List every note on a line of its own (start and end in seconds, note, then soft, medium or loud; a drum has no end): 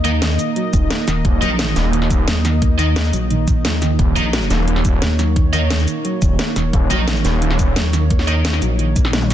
0.00 0.38 D#2 loud
0.00 9.34 A#3 medium
0.00 9.34 D#4 medium
0.00 3.97 D#5 medium
0.05 0.16 A#3 medium
0.05 0.09 D#4 medium
0.05 0.09 A#4 medium
0.05 0.09 D#5 loud
0.05 closed hi-hat medium
0.05 cabasa medium
0.22 0.38 D#3 medium
0.22 snare loud
0.22 closed hi-hat medium
0.30 cabasa soft
0.39 closed hi-hat loud
0.39 cabasa medium
0.56 0.67 F#3 medium
0.56 closed hi-hat medium
0.73 0.89 D#1 loud
0.73 0.90 D#3 medium
0.73 kick loud
0.73 closed hi-hat medium
0.73 cabasa medium
0.90 1.02 A#3 medium
0.90 snare loud
0.90 closed hi-hat medium
1.08 1.23 D#1 loud
1.08 1.24 D#3 medium
1.08 snare soft
1.08 closed hi-hat medium
1.08 cabasa medium
1.25 1.41 D#1 loud
1.25 kick loud
1.25 closed hi-hat medium
1.42 1.75 A#1 loud
1.42 1.53 F#3 medium
1.42 1.49 D#4 medium
1.42 1.49 A#4 medium
1.42 1.49 D#5 loud
1.42 closed hi-hat medium
1.42 cabasa medium
1.59 1.75 D#3 medium
1.59 snare loud
1.59 closed hi-hat medium
1.68 cabasa soft
1.76 2.09 D#1 loud
1.76 1.87 A#3 medium
1.76 snare soft
1.76 closed hi-hat medium
1.76 cabasa medium
1.93 2.10 D#3 medium
1.93 closed hi-hat medium
2.02 snare soft
2.10 2.26 D#1 loud
2.10 kick loud
2.10 closed hi-hat medium
2.10 cabasa medium
2.28 3.12 D#2 loud
2.28 2.39 F#3 medium
2.28 snare loud
2.28 closed hi-hat medium
2.45 2.61 D#3 medium
2.45 snare soft
2.45 closed hi-hat medium
2.45 cabasa medium
2.62 2.73 A#3 medium
2.62 kick loud
2.62 closed hi-hat medium
2.79 2.95 D#3 medium
2.79 2.83 D#4 medium
2.79 2.83 A#4 medium
2.79 2.83 D#5 loud
2.79 closed hi-hat medium
2.79 cabasa medium
2.96 snare loud
2.96 closed hi-hat medium
3.05 cabasa soft
3.13 3.63 A#1 loud
3.13 3.25 F#3 medium
3.13 closed hi-hat medium
3.13 cabasa medium
3.30 3.46 D#3 medium
3.30 closed hi-hat medium
3.48 3.54 D#3 medium
3.48 kick loud
3.48 closed hi-hat medium
3.48 cabasa medium
3.65 3.98 D#2 loud
3.65 3.76 F3 loud
3.65 snare loud
3.65 closed hi-hat medium
3.82 3.89 D#3 loud
3.82 snare soft
3.82 closed hi-hat medium
3.82 cabasa medium
3.99 4.15 D#1 medium
3.99 4.15 D#3 medium
3.99 9.34 C#5 medium
3.99 kick loud
3.99 closed hi-hat medium
4.16 4.49 A#1 loud
4.16 4.23 D#4 medium
4.16 4.23 A#4 medium
4.16 4.23 D#5 loud
4.16 closed hi-hat medium
4.16 cabasa medium
4.33 4.45 F#3 medium
4.33 snare loud
4.33 closed hi-hat medium
4.42 cabasa soft
4.50 4.83 D#1 loud
4.50 4.67 D#3 medium
4.50 snare soft
4.50 closed hi-hat medium
4.50 cabasa medium
4.68 4.79 A#3 medium
4.68 closed hi-hat medium
4.76 snare soft
4.85 5.01 D#1 loud
4.85 5.01 D#3 medium
4.85 kick loud
4.85 closed hi-hat medium
4.85 cabasa medium
5.02 5.86 D#2 loud
5.02 snare loud
5.02 closed hi-hat medium
5.19 5.30 F#3 medium
5.19 snare soft
5.19 closed hi-hat medium
5.19 cabasa medium
5.36 5.52 D#3 medium
5.36 kick loud
5.36 closed hi-hat medium
5.53 5.65 A#3 medium
5.53 5.58 D#4 medium
5.53 5.58 A#4 medium
5.53 5.58 D#5 loud
5.53 closed hi-hat medium
5.53 cabasa medium
5.70 5.87 D#3 medium
5.70 snare loud
5.70 closed hi-hat medium
5.79 cabasa soft
5.88 closed hi-hat medium
5.88 cabasa medium
6.05 6.16 F#3 medium
6.05 closed hi-hat medium
6.22 6.38 D#1 loud
6.22 6.38 D#3 medium
6.22 kick loud
6.22 closed hi-hat medium
6.22 cabasa medium
6.39 6.50 A#3 medium
6.39 snare loud
6.39 closed hi-hat medium
6.56 6.72 D#1 loud
6.56 6.72 D#3 medium
6.56 snare soft
6.56 closed hi-hat medium
6.56 cabasa medium
6.73 6.89 D#1 loud
6.73 kick loud
6.73 closed hi-hat medium
6.90 7.23 A#1 loud
6.90 7.02 F#3 medium
6.90 6.97 D#4 medium
6.90 6.97 A#4 medium
6.90 6.97 D#5 loud
6.90 closed hi-hat loud
6.90 cabasa medium
7.08 7.24 D#3 medium
7.08 snare loud
7.08 closed hi-hat medium
7.16 cabasa soft
7.25 7.58 D#1 loud
7.25 7.36 A#3 medium
7.25 snare soft
7.25 closed hi-hat loud
7.25 cabasa medium
7.42 7.58 D#3 medium
7.42 closed hi-hat medium
7.51 snare soft
7.59 7.75 D#1 loud
7.59 kick loud
7.59 closed hi-hat loud
7.59 cabasa medium
7.76 8.61 D#2 loud
7.76 7.87 F#3 medium
7.76 snare loud
7.76 closed hi-hat medium
7.93 8.10 D#3 medium
7.93 snare soft
7.93 closed hi-hat loud
7.93 cabasa medium
8.10 8.22 A#3 medium
8.10 kick loud
8.10 closed hi-hat medium
8.19 snare soft
8.27 8.44 D#3 medium
8.27 8.32 D#4 medium
8.27 8.32 A#4 medium
8.27 8.32 D#5 medium
8.27 closed hi-hat loud
8.27 cabasa medium
8.45 snare loud
8.45 closed hi-hat medium
8.53 snare medium
8.53 cabasa soft
8.62 9.34 A#1 loud
8.62 8.73 F#3 medium
8.62 closed hi-hat loud
8.62 cabasa medium
8.79 8.95 D#3 medium
8.79 closed hi-hat medium
8.96 9.07 A#3 medium
8.96 kick loud
8.96 closed hi-hat loud
8.96 cabasa medium
9.05 snare medium
9.13 9.30 D#3 medium
9.13 snare loud
9.13 closed hi-hat medium
9.13 high tom medium
9.22 high tom medium
9.22 cabasa soft
9.30 snare soft
9.30 closed hi-hat loud
9.30 cabasa medium